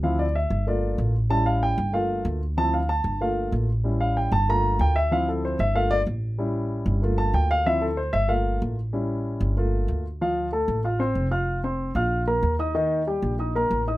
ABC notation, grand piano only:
X:1
M:4/4
L:1/8
Q:1/4=189
K:Dm
V:1 name="Grand piano"
f d e2 d2 z2 | a f g2 f2 z2 | a f a2 f2 z2 | z f g a b2 g e |
f A c e f d z2 | z4 z a g f | e A c e f2 z2 | z8 |
[F,Ff]2 [A,Aa]2 [Fff'] [Ccc']2 [Fff']- | [Fff'] [Ccc']2 [Fff']2 [B,Bb]2 [_E_e_e'] | [_E,_E_e]2 [G,Gg]2 [Ee_e'] [B,Bb]2 [Eee'] |]
V:2 name="Grand piano"
[F,CE] z3 [A,B,F]3 z | [G,^CE]3 z [A,B,F]3 z | [F,CE] z3 [A,B,F]3 z | [G,^CE]3 z [A,B,F]3 z |
[F,CE]3 z [A,B,F] z3 | [G,^CE]4 [A,B,F]4 | [F,CE] z3 [A,B,F]3 z | [G,^CE]4 [A,B,F]3 z |
z8 | z8 | z8 |]